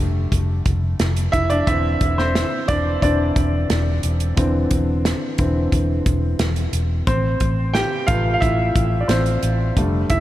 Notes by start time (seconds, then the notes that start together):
Already playing: D3 G3 A3
0.00 F1
0.32 F1, kick, closed hi-hat
0.66 F1, kick, closed hi-hat
1.00 F1, snare, closed hi-hat
1.17 closed hi-hat
1.32 F1 E4 E5, kick, closed hi-hat
1.50 D4 D5, closed hi-hat
1.67 E1 D3 E3 C4 E4 E5, kick, closed hi-hat
2.01 E1, kick, closed hi-hat
2.18 C4 C5, snare
2.35 snare, closed hi-hat
2.68 E1 D4 D5, kick, closed hi-hat
3.02 E1 D3 E3 C4 D4 D5, kick, closed hi-hat
3.36 E1, kick, closed hi-hat
3.70 E1, snare, closed hi-hat
4.03 E1, closed hi-hat
4.20 closed hi-hat
4.36 E1 D3 E3 C4, kick, closed hi-hat
4.71 E1, kick, closed hi-hat
5.05 snare, closed hi-hat
5.38 E1 D3 E3 C4, kick, closed hi-hat
5.72 E1, kick, closed hi-hat
6.06 E1, kick, closed hi-hat
6.39 E1, snare, closed hi-hat
6.56 closed hi-hat
6.73 E1, closed hi-hat
7.07 A1 C4 C5, kick, closed hi-hat
7.40 A1, kick, closed hi-hat
7.74 G4 G5, snare, closed hi-hat
8.07 A1 C3 A3 F4 B4 F5, kick, closed hi-hat
8.34 F5
8.40 A1 E4 E5, kick, closed hi-hat
8.76 A1, kick, closed hi-hat
9.01 D5
9.08 A1 C4 C5, snare, closed hi-hat
9.26 closed hi-hat
9.43 A1, closed hi-hat
9.77 F1 D3 G3 A3, kick, closed hi-hat
10.10 F1 E4 E5, kick, closed hi-hat